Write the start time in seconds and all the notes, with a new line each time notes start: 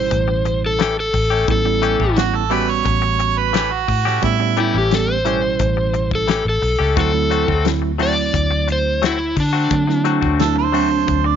Already playing: B2 G3 C#4 E4 C5
0.10 A1, muted clean electric guitar stroke, kick, closed hi-hat
0.28 muted clean electric guitar stroke
0.45 muted clean electric guitar stroke, closed hi-hat
0.66 A4
0.79 E3 A3 C#4 G4, snare, closed hi-hat
0.97 A4, muted clean electric guitar stroke
1.13 A1, muted clean electric guitar stroke, kick, open hi-hat
1.30 A3 C#4 G4
1.48 A1 G3 B3 C#4 E4 A4, kick, closed hi-hat
1.65 G3 B3 C#4 E4, muted clean electric guitar stroke
1.82 E3 A3 C#4 G4, closed hi-hat
1.99 A1 E3 A3 C#4 G4, kick
2.16 G3 B3 C#4 E4 F#4, snare, closed hi-hat
2.34 A4, muted clean electric guitar stroke
2.50 E3 G3 A3 B3 C#4 F#4 G4 B4, open hi-hat
2.68 C#5, muted clean electric guitar stroke
2.85 A1, muted clean electric guitar stroke, kick, closed hi-hat
3.02 muted clean electric guitar stroke
3.19 muted clean electric guitar stroke, closed hi-hat
3.38 B4
3.53 E3 A3 C#4 G4, snare, closed hi-hat
3.71 F#4, muted clean electric guitar stroke
3.88 A2, muted clean electric guitar stroke, kick, open hi-hat
4.05 A3 C#4 G4, snare
4.22 A2 G3 B3 C#4 E4 G4, kick, closed hi-hat
4.40 G3 B3 C#4 E4, muted clean electric guitar stroke
4.57 E3 A3 C#4 E4 G4, closed hi-hat
4.74 A1 E3 A3 C#4 G4
4.78 G4
4.91 G3 B3 C#4 G4 A4, snare, closed hi-hat
5.08 C5, muted clean electric guitar stroke
5.25 B2 E3 G3 A3 C#4 E4 G4, closed hi-hat
5.43 muted clean electric guitar stroke
5.59 A1, muted clean electric guitar stroke, kick, closed hi-hat
5.77 muted clean electric guitar stroke
5.94 muted clean electric guitar stroke, closed hi-hat
6.11 A4, kick
6.28 E3 A3 C#4 G4, snare, closed hi-hat
6.45 A1, muted clean electric guitar stroke
6.49 A4
6.62 B1, muted clean electric guitar stroke, open hi-hat
6.79 C#2 A3 C#4 G4
6.96 D2 F#3 A3 C4 E4 F#4, kick, closed hi-hat
7.00 A4
7.13 F#3 A3 C4 E4, muted clean electric guitar stroke
7.30 F#3 A3 C4 F#4, closed hi-hat
7.47 D2 F#3 A3 C4 F#4, kick
7.65 F#3 A3 C4 E4, snare, closed hi-hat
7.82 muted clean electric guitar stroke
7.98 F#3 A3 C4 E4 F#4, open hi-hat
8.03 D5
8.34 D2, muted clean electric guitar stroke, kick, closed hi-hat
8.51 muted clean electric guitar stroke
8.68 muted clean electric guitar stroke, closed hi-hat
8.72 C5
9.02 F#3 A3 C4 F#4, snare, closed hi-hat
9.06 E4
9.19 muted clean electric guitar stroke
9.36 D3 D4, muted clean electric guitar stroke, kick, open hi-hat
9.53 A3 C4 F#4
9.71 D3 F#3 A3 C4 D4, kick, closed hi-hat
9.87 F#3 A3 C4 E4, muted clean electric guitar stroke, snare
10.04 F#3 A3 C4 F#4, closed hi-hat
10.21 D2 F#3 A3 C4 F#4, kick
10.39 F#3 A3 C4 E4 A4, snare, closed hi-hat
10.56 C5, muted clean electric guitar stroke
10.72 F#3 A3 C4 D4 F#4, open hi-hat
10.90 muted clean electric guitar stroke
11.07 D2, muted clean electric guitar stroke, kick, closed hi-hat
11.24 D5, muted clean electric guitar stroke